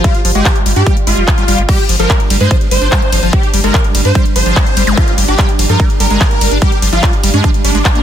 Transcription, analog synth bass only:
0, 0, Header, 1, 2, 480
1, 0, Start_track
1, 0, Tempo, 410959
1, 50, Time_signature, 4, 2, 24, 8
1, 9377, End_track
2, 0, Start_track
2, 0, Title_t, "Analog synth bass"
2, 0, Program_c, 0, 38
2, 290, Note_on_c, 0, 31, 97
2, 370, Note_off_c, 0, 31, 0
2, 410, Note_on_c, 0, 31, 82
2, 490, Note_off_c, 0, 31, 0
2, 770, Note_on_c, 0, 31, 93
2, 850, Note_off_c, 0, 31, 0
2, 890, Note_on_c, 0, 43, 84
2, 970, Note_off_c, 0, 43, 0
2, 1250, Note_on_c, 0, 31, 93
2, 1330, Note_off_c, 0, 31, 0
2, 1370, Note_on_c, 0, 29, 83
2, 1450, Note_off_c, 0, 29, 0
2, 1730, Note_on_c, 0, 31, 96
2, 1810, Note_off_c, 0, 31, 0
2, 1850, Note_on_c, 0, 31, 81
2, 1930, Note_off_c, 0, 31, 0
2, 2210, Note_on_c, 0, 31, 97
2, 2290, Note_off_c, 0, 31, 0
2, 2330, Note_on_c, 0, 31, 84
2, 2409, Note_off_c, 0, 31, 0
2, 2690, Note_on_c, 0, 31, 94
2, 2769, Note_off_c, 0, 31, 0
2, 2810, Note_on_c, 0, 43, 82
2, 2890, Note_off_c, 0, 43, 0
2, 3170, Note_on_c, 0, 31, 93
2, 3249, Note_off_c, 0, 31, 0
2, 3290, Note_on_c, 0, 31, 81
2, 3370, Note_off_c, 0, 31, 0
2, 3650, Note_on_c, 0, 31, 94
2, 3730, Note_off_c, 0, 31, 0
2, 3770, Note_on_c, 0, 31, 82
2, 3850, Note_off_c, 0, 31, 0
2, 4130, Note_on_c, 0, 31, 100
2, 4209, Note_off_c, 0, 31, 0
2, 4250, Note_on_c, 0, 31, 85
2, 4329, Note_off_c, 0, 31, 0
2, 4610, Note_on_c, 0, 31, 93
2, 4690, Note_off_c, 0, 31, 0
2, 4730, Note_on_c, 0, 43, 82
2, 4809, Note_off_c, 0, 43, 0
2, 5090, Note_on_c, 0, 31, 93
2, 5169, Note_off_c, 0, 31, 0
2, 5210, Note_on_c, 0, 31, 85
2, 5290, Note_off_c, 0, 31, 0
2, 5570, Note_on_c, 0, 31, 96
2, 5649, Note_off_c, 0, 31, 0
2, 5690, Note_on_c, 0, 31, 82
2, 5769, Note_off_c, 0, 31, 0
2, 6050, Note_on_c, 0, 31, 100
2, 6130, Note_off_c, 0, 31, 0
2, 6170, Note_on_c, 0, 31, 80
2, 6250, Note_off_c, 0, 31, 0
2, 6530, Note_on_c, 0, 31, 95
2, 6610, Note_off_c, 0, 31, 0
2, 6650, Note_on_c, 0, 43, 84
2, 6730, Note_off_c, 0, 43, 0
2, 7010, Note_on_c, 0, 31, 96
2, 7090, Note_off_c, 0, 31, 0
2, 7130, Note_on_c, 0, 31, 81
2, 7210, Note_off_c, 0, 31, 0
2, 7490, Note_on_c, 0, 31, 98
2, 7569, Note_off_c, 0, 31, 0
2, 7610, Note_on_c, 0, 31, 82
2, 7690, Note_off_c, 0, 31, 0
2, 7970, Note_on_c, 0, 31, 98
2, 8050, Note_off_c, 0, 31, 0
2, 8090, Note_on_c, 0, 31, 85
2, 8170, Note_off_c, 0, 31, 0
2, 8450, Note_on_c, 0, 31, 96
2, 8530, Note_off_c, 0, 31, 0
2, 8570, Note_on_c, 0, 43, 83
2, 8650, Note_off_c, 0, 43, 0
2, 8930, Note_on_c, 0, 31, 94
2, 9010, Note_off_c, 0, 31, 0
2, 9050, Note_on_c, 0, 31, 83
2, 9130, Note_off_c, 0, 31, 0
2, 9377, End_track
0, 0, End_of_file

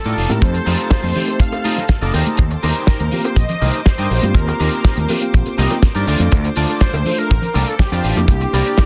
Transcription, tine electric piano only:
0, 0, Header, 1, 2, 480
1, 0, Start_track
1, 0, Tempo, 491803
1, 409, Time_signature, 4, 2, 24, 8
1, 8642, End_track
2, 0, Start_track
2, 0, Title_t, "Tine electric piano"
2, 0, Program_c, 0, 4
2, 277, Note_on_c, 0, 57, 90
2, 284, Note_on_c, 0, 60, 82
2, 291, Note_on_c, 0, 63, 87
2, 297, Note_on_c, 0, 67, 99
2, 1094, Note_off_c, 0, 57, 0
2, 1098, Note_off_c, 0, 60, 0
2, 1101, Note_off_c, 0, 63, 0
2, 1104, Note_off_c, 0, 67, 0
2, 1124, Note_on_c, 0, 57, 91
2, 1127, Note_on_c, 0, 60, 89
2, 1130, Note_on_c, 0, 63, 86
2, 1133, Note_on_c, 0, 67, 106
2, 1220, Note_off_c, 0, 57, 0
2, 1222, Note_off_c, 0, 60, 0
2, 1224, Note_off_c, 0, 63, 0
2, 1225, Note_off_c, 0, 67, 0
2, 1245, Note_on_c, 0, 57, 82
2, 1248, Note_on_c, 0, 60, 71
2, 1250, Note_on_c, 0, 63, 76
2, 1253, Note_on_c, 0, 67, 86
2, 1703, Note_off_c, 0, 57, 0
2, 1705, Note_off_c, 0, 60, 0
2, 1706, Note_off_c, 0, 63, 0
2, 1707, Note_off_c, 0, 67, 0
2, 1963, Note_on_c, 0, 57, 90
2, 1965, Note_on_c, 0, 60, 81
2, 1970, Note_on_c, 0, 63, 84
2, 1973, Note_on_c, 0, 69, 100
2, 2059, Note_off_c, 0, 57, 0
2, 2061, Note_off_c, 0, 60, 0
2, 2063, Note_off_c, 0, 63, 0
2, 2064, Note_off_c, 0, 69, 0
2, 3043, Note_on_c, 0, 58, 96
2, 3047, Note_on_c, 0, 60, 84
2, 3050, Note_on_c, 0, 65, 83
2, 3054, Note_on_c, 0, 67, 98
2, 3140, Note_off_c, 0, 58, 0
2, 3142, Note_off_c, 0, 60, 0
2, 3144, Note_off_c, 0, 65, 0
2, 3145, Note_off_c, 0, 67, 0
2, 3163, Note_on_c, 0, 58, 76
2, 3165, Note_on_c, 0, 60, 68
2, 3169, Note_on_c, 0, 65, 67
2, 3172, Note_on_c, 0, 67, 76
2, 3316, Note_off_c, 0, 58, 0
2, 3316, Note_off_c, 0, 60, 0
2, 3319, Note_off_c, 0, 65, 0
2, 3320, Note_off_c, 0, 67, 0
2, 4118, Note_on_c, 0, 58, 93
2, 4124, Note_on_c, 0, 60, 84
2, 4131, Note_on_c, 0, 65, 88
2, 4136, Note_on_c, 0, 67, 106
2, 4935, Note_off_c, 0, 58, 0
2, 4938, Note_off_c, 0, 60, 0
2, 4941, Note_off_c, 0, 65, 0
2, 4944, Note_off_c, 0, 67, 0
2, 4963, Note_on_c, 0, 58, 91
2, 4967, Note_on_c, 0, 60, 85
2, 4971, Note_on_c, 0, 65, 88
2, 4974, Note_on_c, 0, 67, 108
2, 5060, Note_off_c, 0, 58, 0
2, 5062, Note_off_c, 0, 60, 0
2, 5064, Note_off_c, 0, 65, 0
2, 5066, Note_off_c, 0, 67, 0
2, 5084, Note_on_c, 0, 58, 84
2, 5086, Note_on_c, 0, 60, 71
2, 5089, Note_on_c, 0, 65, 78
2, 5094, Note_on_c, 0, 67, 88
2, 5543, Note_off_c, 0, 58, 0
2, 5544, Note_off_c, 0, 60, 0
2, 5545, Note_off_c, 0, 65, 0
2, 5547, Note_off_c, 0, 67, 0
2, 5563, Note_on_c, 0, 58, 93
2, 5567, Note_on_c, 0, 60, 84
2, 5569, Note_on_c, 0, 65, 89
2, 5572, Note_on_c, 0, 70, 99
2, 5716, Note_off_c, 0, 58, 0
2, 5718, Note_off_c, 0, 60, 0
2, 5719, Note_off_c, 0, 65, 0
2, 5720, Note_off_c, 0, 70, 0
2, 5917, Note_on_c, 0, 57, 100
2, 5922, Note_on_c, 0, 62, 83
2, 5930, Note_on_c, 0, 65, 84
2, 5936, Note_on_c, 0, 69, 100
2, 6854, Note_off_c, 0, 57, 0
2, 6857, Note_off_c, 0, 62, 0
2, 6861, Note_off_c, 0, 65, 0
2, 6864, Note_off_c, 0, 69, 0
2, 6886, Note_on_c, 0, 57, 93
2, 6889, Note_on_c, 0, 62, 87
2, 6892, Note_on_c, 0, 65, 84
2, 6895, Note_on_c, 0, 69, 105
2, 6981, Note_off_c, 0, 57, 0
2, 6983, Note_off_c, 0, 62, 0
2, 6984, Note_off_c, 0, 65, 0
2, 6986, Note_off_c, 0, 69, 0
2, 7004, Note_on_c, 0, 57, 71
2, 7007, Note_on_c, 0, 62, 65
2, 7010, Note_on_c, 0, 65, 69
2, 7014, Note_on_c, 0, 69, 82
2, 7156, Note_off_c, 0, 57, 0
2, 7158, Note_off_c, 0, 62, 0
2, 7159, Note_off_c, 0, 65, 0
2, 7161, Note_off_c, 0, 69, 0
2, 7958, Note_on_c, 0, 58, 97
2, 7965, Note_on_c, 0, 62, 84
2, 7971, Note_on_c, 0, 64, 85
2, 7978, Note_on_c, 0, 67, 101
2, 8642, Note_off_c, 0, 58, 0
2, 8642, Note_off_c, 0, 62, 0
2, 8642, Note_off_c, 0, 64, 0
2, 8642, Note_off_c, 0, 67, 0
2, 8642, End_track
0, 0, End_of_file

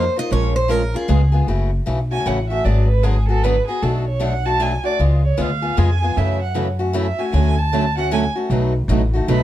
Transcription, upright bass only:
0, 0, Header, 1, 2, 480
1, 0, Start_track
1, 0, Key_signature, 3, "minor"
1, 0, Tempo, 390117
1, 379, Time_signature, 3, 2, 24, 8
1, 11603, End_track
2, 0, Start_track
2, 0, Title_t, "Upright bass"
2, 0, Program_c, 0, 32
2, 385, Note_on_c, 0, 34, 83
2, 1152, Note_off_c, 0, 34, 0
2, 1336, Note_on_c, 0, 37, 90
2, 1722, Note_off_c, 0, 37, 0
2, 1809, Note_on_c, 0, 30, 77
2, 2198, Note_off_c, 0, 30, 0
2, 2299, Note_on_c, 0, 35, 75
2, 2709, Note_off_c, 0, 35, 0
2, 2778, Note_on_c, 0, 33, 81
2, 3189, Note_off_c, 0, 33, 0
2, 3258, Note_on_c, 0, 32, 81
2, 4413, Note_off_c, 0, 32, 0
2, 4706, Note_on_c, 0, 35, 81
2, 5858, Note_off_c, 0, 35, 0
2, 6143, Note_on_c, 0, 37, 78
2, 6528, Note_off_c, 0, 37, 0
2, 6629, Note_on_c, 0, 38, 72
2, 7036, Note_off_c, 0, 38, 0
2, 7108, Note_on_c, 0, 41, 87
2, 7515, Note_off_c, 0, 41, 0
2, 7590, Note_on_c, 0, 42, 86
2, 8739, Note_off_c, 0, 42, 0
2, 9022, Note_on_c, 0, 38, 89
2, 10174, Note_off_c, 0, 38, 0
2, 10455, Note_on_c, 0, 35, 88
2, 10842, Note_off_c, 0, 35, 0
2, 10926, Note_on_c, 0, 33, 90
2, 11341, Note_off_c, 0, 33, 0
2, 11419, Note_on_c, 0, 35, 85
2, 11603, Note_off_c, 0, 35, 0
2, 11603, End_track
0, 0, End_of_file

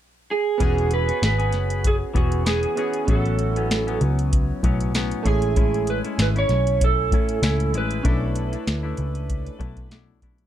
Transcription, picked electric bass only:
0, 0, Header, 1, 2, 480
1, 0, Start_track
1, 0, Tempo, 620476
1, 468, Time_signature, 4, 2, 24, 8
1, 8097, End_track
2, 0, Start_track
2, 0, Title_t, "Picked electric bass"
2, 0, Program_c, 0, 34
2, 468, Note_on_c, 0, 28, 90
2, 851, Note_off_c, 0, 28, 0
2, 947, Note_on_c, 0, 32, 84
2, 1185, Note_off_c, 0, 32, 0
2, 1185, Note_on_c, 0, 30, 73
2, 1569, Note_off_c, 0, 30, 0
2, 1663, Note_on_c, 0, 28, 71
2, 2047, Note_off_c, 0, 28, 0
2, 2384, Note_on_c, 0, 33, 103
2, 3073, Note_off_c, 0, 33, 0
2, 3104, Note_on_c, 0, 37, 86
2, 3488, Note_off_c, 0, 37, 0
2, 3583, Note_on_c, 0, 35, 65
2, 3968, Note_off_c, 0, 35, 0
2, 4065, Note_on_c, 0, 33, 85
2, 4641, Note_off_c, 0, 33, 0
2, 4785, Note_on_c, 0, 32, 85
2, 4977, Note_off_c, 0, 32, 0
2, 5023, Note_on_c, 0, 35, 87
2, 5505, Note_off_c, 0, 35, 0
2, 5505, Note_on_c, 0, 33, 72
2, 5697, Note_off_c, 0, 33, 0
2, 5744, Note_on_c, 0, 37, 83
2, 5988, Note_off_c, 0, 37, 0
2, 5988, Note_on_c, 0, 33, 80
2, 6179, Note_off_c, 0, 33, 0
2, 6228, Note_on_c, 0, 35, 99
2, 6612, Note_off_c, 0, 35, 0
2, 6710, Note_on_c, 0, 38, 76
2, 6901, Note_off_c, 0, 38, 0
2, 6949, Note_on_c, 0, 37, 86
2, 7333, Note_off_c, 0, 37, 0
2, 7426, Note_on_c, 0, 35, 81
2, 7811, Note_off_c, 0, 35, 0
2, 8097, End_track
0, 0, End_of_file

